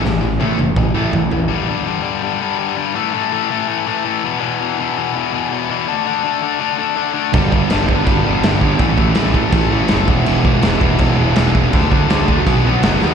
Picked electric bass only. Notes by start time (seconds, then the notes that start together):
0.05 A1
0.23 A1
0.40 A2
0.60 F#1
0.77 A1
0.96 A1
1.15 A1
1.33 A1
7.34 G1
7.73 G1
7.89 G1
8.07 G1
8.27 G1
8.45 G1
8.80 A1
8.98 A1
9.18 A1
9.53 A1
9.72 A1
9.91 F#1
10.08 E1
10.27 E1
10.64 E1
10.82 E1
11.00 E1
11.18 E1
11.38 E1
11.74 D2
11.92 D2
12.11 D2
12.47 B1
12.66 B1
12.84 F#1
13.04 D#2